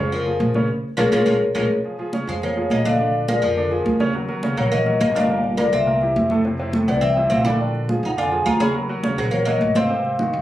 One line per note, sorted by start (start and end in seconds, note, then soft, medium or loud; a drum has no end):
0.00 0.37 F2 medium
0.00 0.20 C#3 medium
0.00 0.21 C#4 medium
0.00 0.11 C5 medium
0.00 0.21 C#5 medium
0.12 0.65 F3 medium
0.12 0.66 A#4 medium
0.12 high conga soft
0.26 0.49 F3 medium
0.26 0.50 F4 medium
0.26 0.50 G#4 medium
0.26 high conga soft
0.40 0.67 A#1 loud
0.40 high conga medium
0.54 0.67 C#3 medium
0.54 0.67 C#4 medium
0.54 0.67 C#5 medium
0.54 high conga medium
0.97 1.08 A#1 loud
0.97 1.07 F3 loud
0.97 1.07 G#3 medium
0.97 1.07 A#3 medium
0.97 1.07 C#4 medium
0.97 1.07 F4 medium
0.97 1.07 G#4 medium
0.97 1.07 A#4 medium
0.97 1.07 C#5 medium
0.97 high conga medium
1.12 1.23 A#1 medium
1.12 1.22 F3 medium
1.12 1.21 G#3 medium
1.12 1.21 A#3 medium
1.12 1.22 A#3 medium
1.12 1.21 C#4 medium
1.12 1.21 F4 medium
1.12 1.21 G#4 medium
1.12 1.21 A#4 medium
1.12 1.21 C#5 medium
1.12 high conga loud
1.26 1.37 A#1 medium
1.26 1.35 F3 medium
1.26 1.35 G#3 medium
1.26 1.36 A#3 medium
1.26 1.36 C#4 medium
1.26 1.36 F4 medium
1.26 1.35 G#4 medium
1.26 1.35 A#4 medium
1.26 1.36 C#5 medium
1.26 high conga medium
1.55 1.66 A#1 loud
1.55 1.64 F3 medium
1.55 1.64 G#3 medium
1.55 1.64 A#3 medium
1.55 1.65 A#3 medium
1.55 1.65 C#4 medium
1.55 1.65 F4 medium
1.55 1.65 G#4 medium
1.55 1.64 A#4 medium
1.55 1.65 C#5 medium
1.55 high conga medium
1.84 1.96 F3 medium
1.84 1.96 F4 medium
1.84 1.96 G#4 medium
1.84 high conga soft
1.99 2.11 F3 medium
1.99 2.11 F4 medium
1.99 2.11 G#4 medium
1.99 high conga soft
2.13 2.25 C#3 medium
2.13 2.25 C#4 medium
2.13 2.25 C#5 medium
2.13 high conga medium
2.27 2.67 F2 medium
2.27 2.51 F3 medium
2.27 2.34 G#3 medium
2.27 2.51 F4 medium
2.27 2.52 G#4 medium
2.27 2.35 C5 medium
2.27 high conga soft
2.42 2.69 A#3 medium
2.42 2.72 C#5 medium
2.42 high conga soft
2.42 low conga medium
2.56 2.80 F3 medium
2.56 2.80 F4 medium
2.56 2.80 G#4 medium
2.56 high conga soft
2.70 3.37 A#1 loud
2.70 2.84 A#3 medium
2.70 2.85 D#5 loud
2.70 high conga medium
2.85 2.97 D3 medium
2.85 2.97 D4 medium
2.85 3.12 D4 medium
2.85 2.97 D5 medium
2.85 3.12 F5 loud
2.85 high conga medium
2.99 3.23 D3 medium
2.99 3.23 D4 medium
2.99 3.23 D5 medium
2.99 high conga soft
3.14 high conga soft
3.28 3.52 F3 medium
3.28 3.42 A#3 medium
3.28 3.52 F4 medium
3.28 3.52 G#4 medium
3.28 3.43 D5 medium
3.28 high conga medium
3.42 3.83 F2 medium
3.42 3.96 F3 medium
3.42 3.96 A#4 medium
3.42 high conga soft
3.57 3.69 D3 medium
3.57 3.69 D4 medium
3.57 3.69 D5 medium
3.57 high conga soft
3.71 3.95 F3 medium
3.71 3.95 F4 medium
3.71 3.95 G#4 medium
3.71 high conga soft
3.86 4.52 D#2 medium
3.86 high conga medium
4.00 4.12 C#3 medium
4.00 4.12 C#4 medium
4.00 4.12 C#5 medium
4.00 high conga medium
4.15 4.26 F#3 medium
4.15 4.27 F#4 medium
4.15 4.27 A#4 medium
4.15 high conga soft
4.28 4.40 F#3 medium
4.28 4.41 F#4 medium
4.28 4.41 A#4 medium
4.28 high conga soft
4.43 4.55 C#3 medium
4.43 4.55 C#4 medium
4.43 4.55 C#5 medium
4.43 high conga medium
4.57 4.98 A#1 medium
4.57 4.81 F#3 medium
4.57 4.70 A#3 medium
4.57 4.81 F#4 medium
4.57 4.81 A#4 medium
4.57 4.71 C#5 medium
4.57 high conga soft
4.72 4.99 A#3 medium
4.72 4.99 D#5 medium
4.72 high conga soft
4.72 low conga medium
4.86 5.10 F#3 medium
4.86 5.10 F#4 medium
4.86 5.10 A#4 medium
4.86 high conga soft
4.86 low conga medium
5.00 5.67 G1 loud
5.00 5.14 A#3 medium
5.00 5.16 D#5 loud
5.00 high conga medium
5.15 5.27 A#2 medium
5.15 5.27 A#3 medium
5.15 5.42 D4 medium
5.15 5.27 A#4 medium
5.15 5.42 F5 loud
5.15 high conga medium
5.29 5.53 A#2 medium
5.29 5.53 A#3 medium
5.29 5.53 A#4 medium
5.29 high conga soft
5.44 high conga soft
5.57 5.81 D3 medium
5.57 5.71 A#3 medium
5.57 5.82 D4 medium
5.57 5.82 F4 medium
5.57 5.74 D5 medium
5.57 high conga medium
5.72 6.13 C2 medium
5.72 6.26 C4 medium
5.72 6.27 E5 medium
5.72 high conga soft
5.87 5.99 A#2 medium
5.87 5.99 A#3 medium
5.87 5.99 A#4 medium
5.87 high conga soft
6.01 6.25 E3 medium
6.01 6.25 E4 medium
6.01 6.26 G4 medium
6.01 high conga soft
6.16 6.83 F2 loud
6.16 high conga medium
6.30 6.42 A2 medium
6.30 6.42 A3 medium
6.30 6.42 A4 medium
6.30 high conga medium
6.45 6.56 C3 medium
6.45 6.57 C4 medium
6.45 6.57 E4 medium
6.45 high conga soft
6.59 6.71 C3 medium
6.59 6.71 C4 medium
6.59 6.71 E4 medium
6.59 high conga soft
6.73 6.85 A2 medium
6.73 6.86 A3 medium
6.73 6.86 A4 medium
6.73 high conga medium
6.88 7.28 C2 medium
6.88 7.11 C3 medium
6.88 7.01 B3 medium
6.88 7.12 C4 medium
6.88 7.12 E4 medium
6.88 7.03 D5 medium
6.88 high conga soft
7.01 7.28 C4 medium
7.01 7.32 E5 medium
7.01 high conga soft
7.01 low conga medium
7.17 7.40 C3 medium
7.17 7.40 C4 medium
7.17 7.41 E4 medium
7.17 high conga soft
7.30 7.98 A#1 medium
7.30 7.44 C4 medium
7.30 7.44 F5 loud
7.30 high conga medium
7.45 7.57 D3 medium
7.45 7.58 D4 medium
7.45 7.50 E4 medium
7.45 7.58 D5 medium
7.45 7.52 G5 medium
7.45 high conga medium
7.60 7.83 D3 medium
7.60 7.84 D4 medium
7.60 7.84 D5 medium
7.60 high conga soft
7.75 high conga soft
7.88 8.12 F3 medium
7.88 8.12 F4 medium
7.88 8.12 G#4 medium
7.88 high conga medium
8.03 8.43 F2 medium
8.03 8.10 D#4 medium
8.03 8.12 F#5 medium
8.03 high conga soft
8.17 8.29 D3 medium
8.17 8.29 D4 medium
8.17 8.45 F4 medium
8.17 8.29 D5 medium
8.17 8.45 G#5 medium
8.17 high conga soft
8.31 8.55 F3 medium
8.31 8.56 F4 medium
8.31 8.56 G#4 medium
8.31 high conga soft
8.46 9.13 D#2 loud
8.46 8.59 F4 medium
8.46 8.61 A#5 loud
8.46 high conga medium
8.60 8.72 C#3 medium
8.60 8.72 C#4 medium
8.60 8.74 G#4 medium
8.60 8.72 C#5 medium
8.60 8.74 B5 medium
8.60 high conga medium
8.75 8.87 F#3 medium
8.75 8.87 F#4 medium
8.75 8.87 A#4 medium
8.75 high conga soft
8.89 9.01 F#3 medium
8.89 9.01 F#4 medium
8.89 9.01 A#4 medium
8.89 high conga soft
9.03 9.15 C#3 medium
9.03 9.15 C#4 medium
9.03 9.16 C#5 medium
9.03 high conga medium
9.18 9.58 A#1 medium
9.18 9.42 F#3 medium
9.18 9.31 G#3 medium
9.18 9.42 F#4 medium
9.18 9.42 A#4 medium
9.18 9.33 C5 medium
9.18 high conga soft
9.31 9.44 A#3 medium
9.31 9.47 C#5 medium
9.31 high conga soft
9.31 low conga medium
9.45 9.70 F#3 medium
9.45 9.73 A#3 medium
9.45 9.71 F#4 medium
9.45 9.71 A#4 medium
9.45 9.76 D#5 loud
9.45 high conga soft
9.45 low conga medium
9.61 10.28 G#1 loud
9.61 high conga medium
9.75 9.87 C3 medium
9.75 10.42 C4 medium
9.75 9.88 C4 medium
9.75 9.88 C5 medium
9.75 10.42 F5 loud
9.75 high conga medium
9.90 10.14 C3 medium
9.90 10.14 C4 medium
9.90 10.14 C5 medium
9.90 high conga soft
10.05 high conga soft
10.19 10.42 D#3 medium
10.19 10.42 D#4 medium
10.19 10.42 F#4 medium
10.19 high conga medium
10.33 10.42 D#2 loud
10.33 high conga soft